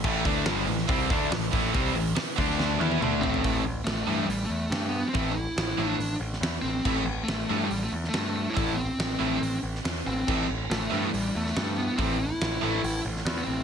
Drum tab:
CC |x---------------|----------------|----------------|----------------|
HH |--o-o-o-o-o-o-o-|o-o-o-o---------|o---o---o---o---|o---o---o---o---|
SD |----o--o----o---|----o--oo-------|----o-------o---|----o------oo---|
T1 |----------------|----------oo----|----------------|----------------|
T2 |----------------|------------o---|----------------|----------------|
FT |----------------|--------------oo|----------------|----------------|
BD |o-o-----o-o---o-|o-----o---------|o---------------|o---------------|

CC |x---------------|----------------|x---------------|----------------|
HH |----o---o---o---|o---o---o---o---|----o---o-------|o---o---o---o---|
SD |----o------oo---|----o------oo---|----o------oo---|----o------oo---|
T1 |----------------|----------------|----------------|----------------|
T2 |----------------|----------------|----------------|----------------|
FT |----------------|----------------|----------------|----------------|
BD |o---------------|o---------------|o---------------|o---------------|